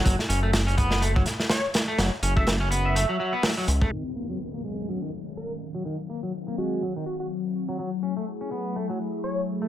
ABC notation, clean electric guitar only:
X:1
M:4/4
L:1/16
Q:"Swing 16ths" 1/4=124
K:Ebdor
V:1 name="Clean electric guitar"
G, z D =A, z D _C2 A, G, z4 z A, | G, z D =A, z D _C2 A, G, G, C G, G, z A, | E, z B, G, z B, A,2 G, E, z4 z G, | E, z B, G, z B, A,2 G, E, z4 z G, |
G, z D =A, z D _C2 A, G, z4 z A, |]